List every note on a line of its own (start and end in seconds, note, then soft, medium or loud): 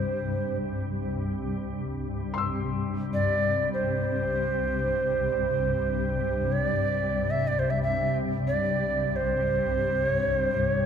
0.00 10.86 C2 medium
0.00 10.86 G2 medium
0.00 0.57 C5 medium
2.34 10.86 C6 medium
2.38 10.86 E6 soft
3.14 3.70 D5 medium
3.74 6.54 C5 medium
6.52 7.32 D5 medium
7.31 7.49 E5 medium
7.48 7.61 D5 medium
7.59 7.72 C5 medium
7.70 7.82 E5 medium
7.83 8.17 E5 medium
8.48 9.17 D5 medium
9.16 10.12 C5 medium
10.12 10.38 C#5 medium
10.38 10.66 C5 medium
10.66 10.86 C#5 medium